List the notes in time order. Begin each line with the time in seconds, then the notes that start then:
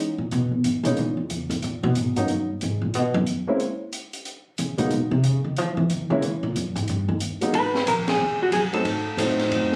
0.18 A#2
0.31 B2, closed hi-hat
0.51 D#2
0.64 G#2, closed hi-hat
0.83 B2 E3 G#3 A#3 C#4 D#4, closed hi-hat
0.97 A#2, closed hi-hat
1.17 C#2
1.30 E2, closed hi-hat
1.50 G#2, closed hi-hat
1.62 A#2, closed hi-hat
1.83 B2
1.95 G#2, closed hi-hat
2.16 G2 F#3 A#3 B3 C#4 D#4, closed hi-hat
2.28 F#2, closed hi-hat
2.49 G2
2.61 G#2, closed hi-hat
2.81 A#2
2.94 B2, closed hi-hat
3.14 F#2
3.27 closed hi-hat
3.47 G#3 A#3 C4 C#4 E4
3.60 closed hi-hat
3.93 closed hi-hat
4.13 closed hi-hat
4.25 closed hi-hat
4.58 C#3, closed hi-hat
4.78 A#2 F#3 G#3 A#3 B3 D#4, closed hi-hat
4.91 B2, closed hi-hat
5.11 C3
5.24 C#3, closed hi-hat
5.44 D#3
5.57 F3, closed hi-hat
5.77 E3
5.90 D#3, closed hi-hat
6.10 D3 E3 G#3 A#3 C#4 E4
6.22 C#3, closed hi-hat
6.43 A#2
6.56 F#2, closed hi-hat
6.76 G#2, closed hi-hat
6.88 G2, closed hi-hat
7.08 D#2
7.20 closed hi-hat
7.41 F#3 G#3 A#3 B3 D#4, closed hi-hat
7.53 G#1 B4, ride
7.75 snare
7.86 A#1 A#4, hi-hat pedal, ride
8.08 G#4, snare, ride
8.19 D#2
8.43 F#4
8.52 F#2 G#4, hi-hat pedal, ride
8.72 F#3 A3 C4 D#4 A4, muted upright bass stroke, ride
8.84 G#2, ride
9.17 A2 F#3 A3 C4 D#4, hi-hat pedal, ride
9.39 snare, ride
9.51 F#2, ride
9.72 snare